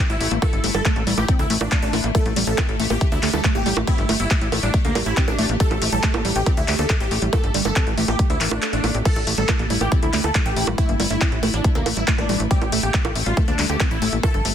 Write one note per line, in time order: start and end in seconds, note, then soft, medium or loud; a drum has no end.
0.00 9.04 A3 medium
0.00 2.17 E4 medium
0.10 0.17 A1 medium
0.10 0.32 E4 medium
0.10 closed hi-hat medium
0.21 0.28 A1 loud
0.21 0.29 A3 loud
0.21 open hi-hat loud
0.31 0.39 A1 medium
0.31 0.37 A#3 medium
0.31 closed hi-hat medium
0.42 0.45 A3 medium
0.42 0.64 A4 loud
0.42 kick loud
0.42 closed hi-hat medium
0.42 high bongo medium
0.53 0.61 G1 medium
0.53 closed hi-hat medium
0.64 0.71 G1 loud
0.64 0.69 A4 medium
0.64 open hi-hat loud
0.75 0.82 G1 medium
0.75 0.80 G3 medium
0.75 1.04 A4 medium
0.75 closed hi-hat medium
0.75 high bongo soft
0.85 0.94 A3 loud
0.85 kick loud
0.85 clap loud
0.85 closed hi-hat medium
0.96 1.04 A1 medium
0.96 1.04 A#3 medium
0.96 closed hi-hat soft
1.07 1.15 A1 loud
1.07 1.15 G3 loud
1.07 open hi-hat loud
1.18 1.25 A1 medium
1.18 1.21 A3 medium
1.18 1.32 G4 medium
1.18 closed hi-hat soft
1.18 high bongo soft
1.28 1.37 C4 loud
1.28 kick loud
1.28 closed hi-hat medium
1.39 1.47 D2 medium
1.39 1.54 E4 medium
1.39 closed hi-hat medium
1.50 1.58 A1 loud
1.50 1.53 A3 medium
1.50 open hi-hat loud
1.61 1.68 A1 medium
1.61 1.69 A3 loud
1.61 1.76 D4 medium
1.61 closed hi-hat medium
1.61 high bongo medium
1.72 1.75 A#3 medium
1.72 kick loud
1.72 clap loud
1.72 closed hi-hat medium
1.82 1.90 A1 medium
1.82 2.05 D4 loud
1.82 closed hi-hat medium
1.93 2.01 A1 loud
1.93 2.01 A3 medium
1.93 open hi-hat loud
1.93 high bongo soft
2.04 2.12 A1 medium
2.04 2.09 A#3 loud
2.04 closed hi-hat medium
2.15 2.23 A3 loud
2.15 9.08 G4 medium
2.15 2.37 A4 loud
2.15 kick loud
2.15 closed hi-hat medium
2.15 high bongo soft
2.26 2.33 A1 medium
2.26 2.34 A#3 medium
2.26 closed hi-hat medium
2.36 2.44 A1 loud
2.36 2.45 G3 loud
2.36 open hi-hat loud
2.47 2.55 A1 medium
2.47 2.50 A3 medium
2.47 2.77 A4 medium
2.58 2.66 C4 loud
2.58 kick loud
2.58 clap loud
2.58 closed hi-hat medium
2.58 high bongo medium
2.69 2.76 A1 medium
2.69 closed hi-hat soft
2.80 2.87 A1 loud
2.80 2.88 A3 loud
2.80 open hi-hat loud
2.90 2.98 A1 medium
2.90 2.96 A#3 medium
2.90 3.05 G4 medium
2.90 closed hi-hat medium
2.90 high bongo soft
3.01 3.04 A3 medium
3.01 kick loud
3.01 closed hi-hat medium
3.12 3.20 D2 medium
3.12 3.27 E4 medium
3.12 closed hi-hat medium
3.23 3.30 D2 loud
3.23 3.28 A3 medium
3.23 clap medium
3.23 open hi-hat loud
3.34 3.41 D2 medium
3.34 3.39 G3 medium
3.34 3.48 A4 medium
3.34 closed hi-hat medium
3.34 high bongo soft
3.44 3.53 A3 loud
3.44 kick loud
3.44 clap loud
3.44 closed hi-hat medium
3.55 3.63 A1 medium
3.55 3.63 A#3 medium
3.55 3.77 G4 loud
3.55 closed hi-hat medium
3.66 3.74 A1 loud
3.66 3.74 G3 loud
3.66 open hi-hat medium
3.77 3.84 A1 medium
3.77 3.80 A3 medium
3.77 closed hi-hat medium
3.77 high bongo medium
3.87 3.96 C4 loud
3.87 4.10 E4 loud
3.87 kick loud
3.87 closed hi-hat medium
3.98 4.06 G1 medium
3.98 closed hi-hat medium
4.09 4.17 G1 loud
4.09 4.17 A3 loud
4.09 open hi-hat loud
4.09 high bongo soft
4.20 4.27 G1 medium
4.20 4.25 A#3 medium
4.20 4.49 E4 loud
4.20 closed hi-hat medium
4.31 4.34 A3 medium
4.31 kick loud
4.31 clap loud
4.31 closed hi-hat medium
4.41 4.49 A1 medium
4.41 closed hi-hat medium
4.52 4.60 A1 loud
4.52 4.58 A3 medium
4.52 open hi-hat medium
4.52 high bongo soft
4.63 4.71 A1 medium
4.63 4.69 G3 medium
4.63 4.78 D4 medium
4.63 closed hi-hat medium
4.74 4.82 A3 loud
4.74 kick loud
4.74 closed hi-hat medium
4.85 4.92 D2 medium
4.85 4.99 A#3 medium
4.85 4.93 A#3 medium
4.85 closed hi-hat medium
4.95 5.03 A1 loud
4.95 5.04 G3 loud
4.95 open hi-hat loud
4.95 high bongo medium
5.06 5.14 A1 medium
5.06 5.09 A3 medium
5.06 5.21 E4 medium
5.06 closed hi-hat medium
5.17 5.25 C4 loud
5.17 kick loud
5.17 clap loud
5.17 closed hi-hat medium
5.28 5.35 A1 medium
5.28 5.50 D4 loud
5.28 closed hi-hat medium
5.28 high bongo soft
5.39 5.46 A1 loud
5.39 5.47 A3 loud
5.39 open hi-hat medium
5.49 5.57 A1 medium
5.49 5.55 A#3 medium
5.49 closed hi-hat medium
5.60 5.63 A3 medium
5.60 5.82 A4 loud
5.60 kick loud
5.60 closed hi-hat loud
5.71 5.79 A1 medium
5.71 closed hi-hat medium
5.71 high bongo soft
5.82 5.89 A1 loud
5.82 5.87 A3 medium
5.82 open hi-hat loud
5.92 6.00 A1 medium
5.92 5.98 G3 medium
5.92 6.22 A4 loud
5.92 closed hi-hat medium
6.03 6.12 A3 loud
6.03 kick loud
6.03 clap loud
6.03 closed hi-hat medium
6.14 6.22 A1 medium
6.14 6.22 A#3 medium
6.14 closed hi-hat medium
6.14 high bongo medium
6.25 6.33 A1 loud
6.25 6.33 G3 loud
6.25 open hi-hat medium
6.36 6.43 A1 medium
6.36 6.39 A3 medium
6.36 6.50 G4 medium
6.36 closed hi-hat medium
6.46 6.55 C4 loud
6.46 kick loud
6.46 closed hi-hat medium
6.46 high bongo soft
6.57 6.65 D2 medium
6.57 6.72 E4 medium
6.57 closed hi-hat medium
6.68 6.76 D2 loud
6.68 6.76 A3 loud
6.68 clap medium
6.68 open hi-hat loud
6.79 6.86 D2 medium
6.79 6.84 A#3 medium
6.79 6.94 A4 medium
6.79 closed hi-hat medium
6.90 6.93 A3 medium
6.90 kick loud
6.90 clap loud
6.90 closed hi-hat loud
6.90 high bongo soft
7.00 7.08 A1 medium
7.00 7.22 G4 loud
7.00 closed hi-hat medium
7.11 7.19 A1 loud
7.11 7.17 A3 medium
7.11 open hi-hat medium
7.22 7.30 A1 medium
7.22 7.28 G3 medium
7.22 closed hi-hat medium
7.33 7.41 A3 loud
7.33 7.55 A4 loud
7.33 kick loud
7.33 closed hi-hat loud
7.33 high bongo medium
7.44 7.51 G1 medium
7.44 7.52 A#3 medium
7.44 closed hi-hat medium
7.54 7.62 G1 loud
7.54 7.63 G3 loud
7.54 open hi-hat loud
7.65 7.73 G1 medium
7.65 7.68 A3 medium
7.65 7.95 A4 loud
7.65 closed hi-hat medium
7.65 high bongo soft
7.76 7.84 C4 loud
7.76 kick loud
7.76 clap loud
7.76 closed hi-hat loud
7.87 7.94 A1 medium
7.87 closed hi-hat medium
7.98 8.05 A1 loud
7.98 8.06 A3 loud
7.98 open hi-hat medium
8.08 8.16 A1 medium
8.08 8.14 A#3 medium
8.08 8.23 G4 medium
8.08 closed hi-hat medium
8.08 high bongo soft
8.19 8.22 A3 medium
8.19 kick loud
8.19 closed hi-hat loud
8.19 swell medium
8.30 8.38 D2 medium
8.30 8.45 E4 medium
8.30 closed hi-hat medium
8.41 8.48 A1 loud
8.41 8.49 A#4 loud
8.41 clap medium
8.41 open hi-hat loud
8.51 8.59 A1 medium
8.51 8.57 A3 medium
8.51 8.66 D4 medium
8.51 high bongo medium
8.62 8.68 A4 loud
8.62 clap loud
8.62 closed hi-hat loud
8.73 8.81 A1 medium
8.73 8.79 A3 medium
8.73 8.95 D4 loud
8.73 closed hi-hat medium
8.84 8.91 A1 loud
8.84 8.89 A#3 medium
8.84 open hi-hat medium
8.84 high bongo soft
8.95 9.02 A1 medium
8.95 9.03 C4 medium
8.95 closed hi-hat medium
9.05 9.09 A3 medium
9.05 14.55 A3 medium
9.05 12.53 E4 medium
9.05 9.28 A4 loud
9.05 kick loud
9.05 closed hi-hat loud
9.05 crash medium
9.05 high bongo soft
9.16 9.24 A1 medium
9.16 9.24 A4 loud
9.16 closed hi-hat medium
9.27 9.35 A1 loud
9.27 9.32 A3 medium
9.27 open hi-hat loud
9.38 9.45 A1 medium
9.38 9.43 G3 medium
9.38 9.67 A4 medium
9.38 closed hi-hat medium
9.49 9.57 A3 loud
9.49 kick loud
9.49 clap loud
9.49 closed hi-hat loud
9.49 high bongo medium
9.59 9.67 A1 medium
9.59 9.68 A#3 medium
9.59 closed hi-hat medium
9.70 9.78 A1 loud
9.70 9.78 G3 loud
9.70 open hi-hat medium
9.81 9.89 A1 medium
9.81 9.84 A3 medium
9.81 9.96 G4 medium
9.81 high bongo soft
9.92 10.00 C4 loud
9.92 kick loud
9.92 closed hi-hat loud
10.03 10.10 D2 medium
10.03 10.17 E4 medium
10.03 closed hi-hat medium
10.13 10.21 D2 loud
10.13 10.22 A3 loud
10.13 clap medium
10.13 open hi-hat loud
10.24 10.32 D2 medium
10.24 10.30 A#3 medium
10.24 10.39 A4 medium
10.24 closed hi-hat medium
10.24 high bongo soft
10.35 10.38 A3 medium
10.35 kick loud
10.35 clap loud
10.35 closed hi-hat medium
10.46 10.53 A1 medium
10.46 10.68 G4 loud
10.46 10.54 A4 loud
10.46 closed hi-hat medium
10.56 10.64 A1 loud
10.56 10.62 A3 medium
10.56 open hi-hat loud
10.67 10.75 A1 medium
10.67 10.73 G3 medium
10.67 high bongo medium
10.78 10.86 A3 loud
10.78 11.00 E4 loud
10.78 kick loud
10.78 closed hi-hat loud
10.89 10.97 G1 medium
10.89 10.97 A#3 medium
10.89 closed hi-hat medium
11.00 11.07 G1 loud
11.00 11.08 G3 loud
11.00 open hi-hat loud
11.00 high bongo soft
11.10 11.18 G1 medium
11.10 11.14 A3 medium
11.10 11.40 E4 loud
11.10 closed hi-hat medium
11.21 11.30 C4 loud
11.21 kick loud
11.21 clap loud
11.21 closed hi-hat loud
11.32 11.40 A1 medium
11.32 closed hi-hat medium
11.43 11.50 A1 loud
11.43 11.51 A3 loud
11.43 open hi-hat loud
11.43 high bongo soft
11.54 11.61 A1 medium
11.54 11.59 A#3 medium
11.54 11.68 D4 medium
11.54 closed hi-hat medium
11.64 11.68 A3 medium
11.64 kick loud
11.64 closed hi-hat medium
11.75 11.83 D2 medium
11.75 11.90 A#3 medium
11.75 11.83 A4 loud
11.75 closed hi-hat medium
11.86 11.94 A1 loud
11.86 11.92 A3 medium
11.86 open hi-hat loud
11.86 high bongo medium
11.97 12.04 A1 medium
11.97 12.02 G3 medium
11.97 12.12 E4 medium
11.97 closed hi-hat medium
12.08 12.16 A3 loud
12.08 kick loud
12.08 clap loud
12.08 closed hi-hat medium
12.18 12.26 A1 medium
12.18 12.27 A#3 medium
12.18 12.40 D4 loud
12.18 closed hi-hat medium
12.18 high bongo soft
12.29 12.37 A1 loud
12.29 12.37 G3 loud
12.29 open hi-hat loud
12.40 12.48 A1 medium
12.40 12.43 A3 medium
12.40 closed hi-hat medium
12.51 12.59 C4 loud
12.51 12.73 G4 loud
12.51 14.55 A4 medium
12.51 kick loud
12.51 closed hi-hat medium
12.62 12.69 A1 medium
12.62 closed hi-hat medium
12.62 high bongo soft
12.72 12.80 A1 loud
12.72 12.81 A3 loud
12.72 open hi-hat loud
12.83 12.91 A1 medium
12.83 12.89 A#3 medium
12.83 13.13 G4 loud
12.83 closed hi-hat medium
12.94 12.97 A3 medium
12.94 kick loud
12.94 clap loud
12.94 closed hi-hat medium
13.05 13.12 A1 medium
13.05 13.13 A4 loud
13.05 closed hi-hat medium
13.05 high bongo medium
13.15 13.23 A1 loud
13.15 13.21 A3 medium
13.15 open hi-hat loud
13.26 13.34 A1 medium
13.26 13.32 G3 medium
13.26 13.41 F4 medium
13.26 closed hi-hat medium
13.37 13.45 A3 loud
13.37 kick loud
13.37 closed hi-hat medium
13.37 high bongo soft
13.48 13.56 D2 medium
13.48 13.56 A#3 medium
13.48 13.63 D4 medium
13.48 closed hi-hat medium
13.59 13.66 D2 loud
13.59 13.67 G3 loud
13.59 clap medium
13.59 open hi-hat loud
13.69 13.77 D2 medium
13.69 13.73 A3 medium
13.69 13.84 G4 medium
13.69 closed hi-hat medium
13.80 13.88 C4 loud
13.80 kick loud
13.80 clap loud
13.80 closed hi-hat medium
13.80 high bongo soft
13.91 13.99 A1 medium
13.91 14.13 E4 loud
13.91 closed hi-hat medium
14.02 14.09 A1 loud
14.02 14.10 A3 loud
14.02 open hi-hat loud
14.13 14.20 A1 medium
14.13 14.18 A#3 medium
14.13 closed hi-hat medium
14.23 14.27 A3 medium
14.23 14.45 A4 loud
14.23 kick loud
14.23 closed hi-hat medium
14.23 high bongo medium
14.34 14.42 G1 medium
14.34 14.42 A4 loud
14.34 closed hi-hat medium
14.45 14.53 G1 loud
14.45 14.51 A3 medium
14.45 open hi-hat loud